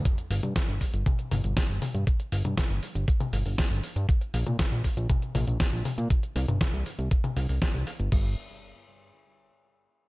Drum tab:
CC |----------------|----------------|----------------|----------------|
HH |xxoxx-oxxxoxx-ox|xxoxxxoxxxooxxox|xxoxx-oxxxoxx-ox|xxoxxxoxxxooxxox|
SD |----o-------o---|----o-------o---|----o-------o---|----o-------o---|
T1 |---o----o-o---o-|---o-----o------|---o----o-o---o-|---o-----o------|
BD |o---o-o-o---o---|o---o---o---o---|o---o-o-o---o---|o---o---o---o---|

CC |x---------------|
HH |----------------|
SD |----------------|
T1 |----------------|
BD |o---------------|